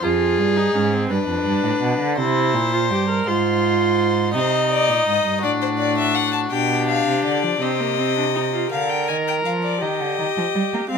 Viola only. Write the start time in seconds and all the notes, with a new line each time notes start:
0.02 F4
0.57 D#4
0.75 C#4
0.93 C4
1.11 D4
2.19 E4
2.73 F4
2.92 G4
3.09 A#4
3.27 F4
4.34 D#4
5.43 D4
6.52 D4
7.62 C4
7.81 A#3
7.99 C4
8.17 D4
8.35 D#4
8.53 F4
8.71 A#4
9.81 G4
10.90 C4